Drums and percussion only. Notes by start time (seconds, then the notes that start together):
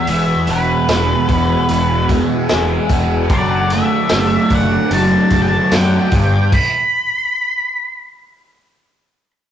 0.07 open hi-hat
0.47 open hi-hat
0.89 snare, open hi-hat
1.29 kick, open hi-hat
1.69 open hi-hat
2.09 kick, open hi-hat
2.49 snare, open hi-hat
2.89 kick, open hi-hat
3.30 kick, open hi-hat
3.70 open hi-hat
4.09 snare, open hi-hat
4.50 kick, open hi-hat
4.91 open hi-hat
5.30 kick, open hi-hat
5.72 snare, open hi-hat
6.12 kick, open hi-hat
6.52 kick, crash